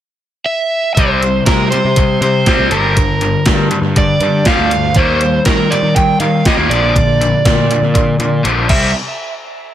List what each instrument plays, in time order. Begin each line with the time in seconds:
0.46 overdriven electric guitar E5
0.95 picked electric bass C2, distorted electric guitar C3 G3, overdriven electric guitar C5, kick, closed hi-hat
0.99 distorted electric guitar C4
1.22 distorted electric guitar C3 G3, closed hi-hat
1.46 picked electric bass C3, distorted electric guitar C3 G3, overdriven electric guitar A#4, kick, snare, closed hi-hat
1.70 distorted electric guitar C3 G3, overdriven electric guitar C5, closed hi-hat
1.84 picked electric bass C3
1.96 distorted electric guitar C3 G3, kick, closed hi-hat
2.21 picked electric bass C3, distorted electric guitar C3 G3, overdriven electric guitar C5, closed hi-hat
2.46 distorted electric guitar C3 G3 C4, kick, snare, closed hi-hat
2.58 picked electric bass C2
2.70 picked electric bass G1, distorted electric guitar G2 D3 G3, overdriven electric guitar A#4, closed hi-hat
2.95 distorted electric guitar G2 D3, kick, closed hi-hat
3.21 distorted electric guitar G2 D3, closed hi-hat
3.46 distorted electric guitar G2 D3, picked electric bass G2, kick, snare, closed hi-hat
3.71 distorted electric guitar G2 D3, closed hi-hat
3.82 picked electric bass G2
3.96 distorted electric guitar G2 D3, overdriven electric guitar D5, kick, closed hi-hat
4.20 picked electric bass G2, distorted electric guitar G2 D3, closed hi-hat
4.45 distorted electric guitar G2 D3 G3, overdriven electric guitar F5, kick, snare, closed hi-hat
4.58 picked electric bass D2
4.71 distorted electric guitar G2 D3, closed hi-hat
4.94 picked electric bass D#2, distorted electric guitar D#3 G3 A#3, overdriven electric guitar C5, kick, closed hi-hat
5.21 distorted electric guitar D#3 G3, closed hi-hat
5.45 picked electric bass D#3, distorted electric guitar D#3 G3, overdriven electric guitar A#4, kick, snare, closed hi-hat
5.70 distorted electric guitar D#3 G3, overdriven electric guitar D5, closed hi-hat
5.82 picked electric bass D#3
5.96 distorted electric guitar D#3 G3, overdriven electric guitar G5, kick, closed hi-hat
6.20 picked electric bass D#3, distorted electric guitar D#3 G3, overdriven electric guitar F5, closed hi-hat
6.45 distorted electric guitar D#3 G3 A#3, overdriven electric guitar D#5, kick, snare, closed hi-hat
6.57 picked electric bass D#2
6.69 picked electric bass A#1, distorted electric guitar A#2 D3 F3, overdriven electric guitar D5, closed hi-hat
6.95 distorted electric guitar A#2 D3, kick, closed hi-hat
7.21 distorted electric guitar A#2 D3, closed hi-hat
7.45 picked electric bass A#2, distorted electric guitar A#2 D3, kick, snare, closed hi-hat
7.71 distorted electric guitar A#2 D3, closed hi-hat
7.82 picked electric bass A#2
7.94 distorted electric guitar A#2 D3, kick, closed hi-hat
8.19 picked electric bass A#2, distorted electric guitar A#2 D3, closed hi-hat
8.43 picked electric bass A#1, distorted electric guitar A#2 D3 F3, closed hi-hat
8.68 picked electric bass C2, distorted electric guitar C3 G3 C4 E4, overdriven electric guitar E5, kick, crash